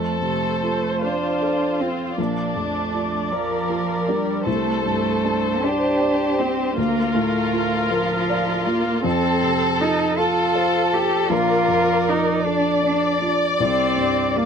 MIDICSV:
0, 0, Header, 1, 5, 480
1, 0, Start_track
1, 0, Key_signature, -2, "major"
1, 0, Tempo, 797872
1, 852, Tempo, 768246
1, 1331, Time_signature, 6, 3, 24, 8
1, 3732, Tempo, 753769
1, 6612, Tempo, 763359
1, 9069, End_track
2, 0, Start_track
2, 0, Title_t, "Viola"
2, 0, Program_c, 0, 41
2, 0, Note_on_c, 0, 72, 45
2, 1305, Note_off_c, 0, 72, 0
2, 1330, Note_on_c, 0, 74, 49
2, 2734, Note_off_c, 0, 74, 0
2, 2761, Note_on_c, 0, 72, 56
2, 4206, Note_on_c, 0, 70, 70
2, 4216, Note_off_c, 0, 72, 0
2, 5648, Note_off_c, 0, 70, 0
2, 5651, Note_on_c, 0, 69, 63
2, 7066, Note_off_c, 0, 69, 0
2, 7092, Note_on_c, 0, 74, 66
2, 9069, Note_off_c, 0, 74, 0
2, 9069, End_track
3, 0, Start_track
3, 0, Title_t, "Violin section"
3, 0, Program_c, 1, 48
3, 0, Note_on_c, 1, 69, 57
3, 592, Note_off_c, 1, 69, 0
3, 620, Note_on_c, 1, 65, 50
3, 1318, Note_off_c, 1, 65, 0
3, 1323, Note_on_c, 1, 62, 56
3, 2041, Note_off_c, 1, 62, 0
3, 2041, Note_on_c, 1, 70, 61
3, 2744, Note_on_c, 1, 69, 65
3, 2758, Note_off_c, 1, 70, 0
3, 3473, Note_off_c, 1, 69, 0
3, 3487, Note_on_c, 1, 67, 61
3, 4201, Note_on_c, 1, 65, 80
3, 4205, Note_off_c, 1, 67, 0
3, 5625, Note_off_c, 1, 65, 0
3, 5658, Note_on_c, 1, 69, 89
3, 6355, Note_off_c, 1, 69, 0
3, 6363, Note_on_c, 1, 69, 82
3, 7073, Note_off_c, 1, 69, 0
3, 7093, Note_on_c, 1, 70, 87
3, 7810, Note_off_c, 1, 70, 0
3, 7813, Note_on_c, 1, 74, 79
3, 9069, Note_off_c, 1, 74, 0
3, 9069, End_track
4, 0, Start_track
4, 0, Title_t, "Felt piano"
4, 0, Program_c, 2, 0
4, 0, Note_on_c, 2, 41, 47
4, 8, Control_c, 2, 64, 127
4, 127, Note_on_c, 2, 48, 35
4, 374, Note_on_c, 2, 65, 31
4, 520, Note_off_c, 2, 48, 0
4, 615, Note_on_c, 2, 72, 37
4, 758, Note_off_c, 2, 65, 0
4, 854, Note_on_c, 2, 69, 39
4, 995, Note_off_c, 2, 72, 0
4, 1092, Note_on_c, 2, 65, 39
4, 1236, Note_off_c, 2, 69, 0
4, 1305, Note_off_c, 2, 41, 0
4, 1330, Note_on_c, 2, 34, 50
4, 1331, Note_off_c, 2, 65, 0
4, 1342, Control_c, 2, 64, 0
4, 1430, Control_c, 2, 64, 127
4, 1563, Note_on_c, 2, 41, 34
4, 1804, Note_on_c, 2, 65, 41
4, 1947, Note_off_c, 2, 41, 0
4, 2042, Note_on_c, 2, 74, 40
4, 2185, Note_off_c, 2, 65, 0
4, 2275, Note_on_c, 2, 65, 46
4, 2423, Note_off_c, 2, 74, 0
4, 2519, Note_on_c, 2, 62, 44
4, 2660, Note_off_c, 2, 65, 0
4, 2734, Note_off_c, 2, 34, 0
4, 2754, Note_on_c, 2, 36, 59
4, 2760, Note_off_c, 2, 62, 0
4, 2771, Control_c, 2, 64, 0
4, 2885, Control_c, 2, 64, 127
4, 3002, Note_on_c, 2, 43, 43
4, 3245, Note_on_c, 2, 62, 46
4, 3398, Note_off_c, 2, 43, 0
4, 3491, Note_on_c, 2, 72, 53
4, 3637, Note_off_c, 2, 62, 0
4, 3724, Note_on_c, 2, 74, 51
4, 3875, Note_off_c, 2, 72, 0
4, 3970, Note_on_c, 2, 62, 49
4, 4109, Note_off_c, 2, 74, 0
4, 4182, Note_off_c, 2, 36, 0
4, 4209, Note_off_c, 2, 62, 0
4, 4209, Note_on_c, 2, 38, 60
4, 4220, Control_c, 2, 64, 0
4, 4333, Control_c, 2, 64, 127
4, 4446, Note_on_c, 2, 45, 48
4, 4691, Note_on_c, 2, 65, 50
4, 4835, Note_off_c, 2, 45, 0
4, 4932, Note_on_c, 2, 70, 55
4, 5079, Note_off_c, 2, 65, 0
4, 5176, Note_on_c, 2, 74, 54
4, 5319, Note_off_c, 2, 70, 0
4, 5411, Note_on_c, 2, 65, 50
4, 5560, Note_off_c, 2, 74, 0
4, 5629, Note_off_c, 2, 38, 0
4, 5653, Note_off_c, 2, 65, 0
4, 5653, Note_on_c, 2, 41, 71
4, 5668, Control_c, 2, 64, 0
4, 5753, Control_c, 2, 64, 127
4, 5891, Note_on_c, 2, 48, 48
4, 6136, Note_on_c, 2, 65, 49
4, 6276, Note_off_c, 2, 48, 0
4, 6375, Note_on_c, 2, 69, 58
4, 6519, Note_off_c, 2, 65, 0
4, 6614, Note_on_c, 2, 72, 60
4, 6758, Note_off_c, 2, 69, 0
4, 6855, Note_on_c, 2, 65, 56
4, 6997, Note_off_c, 2, 72, 0
4, 7067, Note_off_c, 2, 41, 0
4, 7084, Note_on_c, 2, 34, 69
4, 7094, Note_off_c, 2, 65, 0
4, 7103, Control_c, 2, 64, 0
4, 7202, Control_c, 2, 64, 127
4, 7326, Note_on_c, 2, 41, 49
4, 7573, Note_on_c, 2, 65, 48
4, 7711, Note_off_c, 2, 41, 0
4, 7810, Note_on_c, 2, 69, 53
4, 7954, Note_off_c, 2, 65, 0
4, 8047, Note_on_c, 2, 74, 54
4, 8192, Note_off_c, 2, 69, 0
4, 8289, Note_on_c, 2, 65, 50
4, 8432, Note_off_c, 2, 74, 0
4, 8500, Note_off_c, 2, 34, 0
4, 8530, Note_off_c, 2, 65, 0
4, 8530, Note_on_c, 2, 36, 67
4, 8540, Control_c, 2, 64, 0
4, 8632, Control_c, 2, 64, 127
4, 8764, Note_on_c, 2, 43, 42
4, 9010, Note_on_c, 2, 62, 42
4, 9069, Note_off_c, 2, 36, 0
4, 9069, Note_off_c, 2, 43, 0
4, 9069, Note_off_c, 2, 62, 0
4, 9069, End_track
5, 0, Start_track
5, 0, Title_t, "Cello"
5, 0, Program_c, 3, 42
5, 0, Note_on_c, 3, 57, 58
5, 129, Note_off_c, 3, 57, 0
5, 133, Note_on_c, 3, 57, 59
5, 623, Note_on_c, 3, 62, 73
5, 632, Note_off_c, 3, 57, 0
5, 1095, Note_on_c, 3, 60, 58
5, 1104, Note_off_c, 3, 62, 0
5, 1330, Note_off_c, 3, 60, 0
5, 1333, Note_on_c, 3, 58, 64
5, 1569, Note_on_c, 3, 57, 61
5, 1579, Note_off_c, 3, 58, 0
5, 2041, Note_on_c, 3, 53, 69
5, 2051, Note_off_c, 3, 57, 0
5, 2520, Note_on_c, 3, 55, 70
5, 2529, Note_off_c, 3, 53, 0
5, 2757, Note_on_c, 3, 57, 69
5, 2767, Note_off_c, 3, 55, 0
5, 2999, Note_off_c, 3, 57, 0
5, 3003, Note_on_c, 3, 57, 76
5, 3488, Note_on_c, 3, 62, 81
5, 3498, Note_off_c, 3, 57, 0
5, 3962, Note_on_c, 3, 60, 80
5, 3972, Note_off_c, 3, 62, 0
5, 4195, Note_off_c, 3, 60, 0
5, 4199, Note_on_c, 3, 58, 89
5, 4441, Note_on_c, 3, 57, 77
5, 4450, Note_off_c, 3, 58, 0
5, 4930, Note_on_c, 3, 53, 80
5, 4940, Note_off_c, 3, 57, 0
5, 5421, Note_on_c, 3, 58, 84
5, 5430, Note_off_c, 3, 53, 0
5, 5648, Note_off_c, 3, 58, 0
5, 5652, Note_on_c, 3, 60, 105
5, 6138, Note_on_c, 3, 63, 93
5, 6148, Note_off_c, 3, 60, 0
5, 6377, Note_on_c, 3, 65, 92
5, 6387, Note_off_c, 3, 63, 0
5, 6857, Note_on_c, 3, 67, 92
5, 6866, Note_off_c, 3, 65, 0
5, 7094, Note_off_c, 3, 67, 0
5, 7097, Note_on_c, 3, 65, 109
5, 7581, Note_on_c, 3, 63, 90
5, 7591, Note_off_c, 3, 65, 0
5, 7817, Note_on_c, 3, 62, 86
5, 7826, Note_off_c, 3, 63, 0
5, 8052, Note_off_c, 3, 62, 0
5, 8062, Note_on_c, 3, 62, 79
5, 8290, Note_off_c, 3, 62, 0
5, 8531, Note_on_c, 3, 60, 94
5, 9014, Note_on_c, 3, 58, 81
5, 9023, Note_off_c, 3, 60, 0
5, 9069, Note_off_c, 3, 58, 0
5, 9069, End_track
0, 0, End_of_file